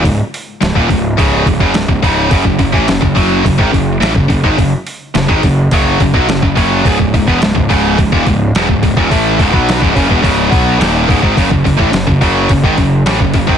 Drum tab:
HH |o-o-o-o-o-o-o-o-|o-o-o-o-o-o-o-o-|o-o-o-o-o-o-o-o-|o-o-o-o-o-o-o-o-|
SD |----o-------o---|----o-------o---|----o-------o---|----o-------o---|
BD |o----oo-o-oo-oo-|oooo-oo-ooo--ooo|o----oo-o-oo-oo-|oooo-oo-ooo--ooo|

HH |o-o-o-o-o-o-o-o-|o-o-o-o-o-o-o-o-|
SD |----o-------o---|----o-------o---|
BD |o-oo-oooo-o---oo|oooo-oo-ooo--ooo|